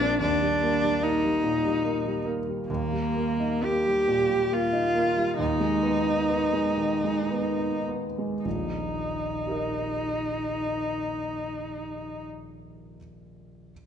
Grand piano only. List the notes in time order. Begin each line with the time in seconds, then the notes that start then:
Already playing: A#1 G3 A#3
0.00 C4
0.21 D#2
0.41 G3
0.62 A#3
0.82 G3
1.02 A#3
1.23 G3
1.43 A#2
1.65 G3
1.85 A#3
2.06 G3
2.26 A#3
2.48 G3
2.70 D#2
2.92 G3
3.16 A#3
3.40 D#4
3.63 A#3
3.86 G3
4.08 A#2
4.29 G3
4.51 A#3
4.73 D#4
4.95 A#3
5.16 G3
5.39 D#2
5.60 G#3
5.83 B3
6.05 D#4
6.29 B3
6.53 G#3
6.77 D#3
7.04 G#3
7.31 B3
7.58 D#4
7.88 B3
8.18 G#3
8.45 D#1 A#1
9.47 G4 A#4 D#5